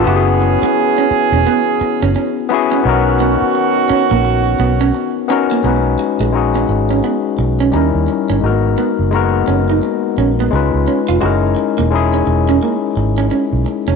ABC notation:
X:1
M:4/4
L:1/16
Q:"Swing 16ths" 1/4=86
K:B
V:1 name="Tine electric piano"
[B,CEF=G^G]8 z6 [B,CEFG]2 | [B,CDFA]8 z6 [B,CDFA]2 | [G,CDFB]4 [G,CDFG]8 [=G,CDEA]4 | [G,A,B,DFA]4 [G,A,B,DFA]8 [G,CD^EB]4 |
[G,CDEA]4 [G,CDEG]8 z4 |]
V:2 name="Clean electric guitar"
F z2 B, z C z C B, z2 C C z2 C | z2 B, z3 C A, z2 B, C z2 C A, | B, z2 G, z C z C B, z2 C C z2 C | z2 B, z3 C D z2 C B, z2 C ^E |
F z2 A, z C z C A, z2 C C z2 C |]
V:3 name="Horn section"
[E,CG]12- [E,CG]2 z2 | [D,CF]12- [D,CF]2 z2 | z16 | z16 |
z16 |]
V:4 name="Fingered electric bass" clef=bass
F,,,3 z4 E,,, z3 F,,, z4 | B,,,3 z4 A,,,3 B,,,2 z4 | B,,,2 z A,,,3 G,,,2 z2 B,,,2 D,, D,, z =G,,, | G,,,2 z F,,,3 F,,,2 z2 A,,,2 C,, C,, z ^E,,, |
F,,,2 z E,,,3 E,,,2 z2 G,,,2 z B,,, z ^E,,, |]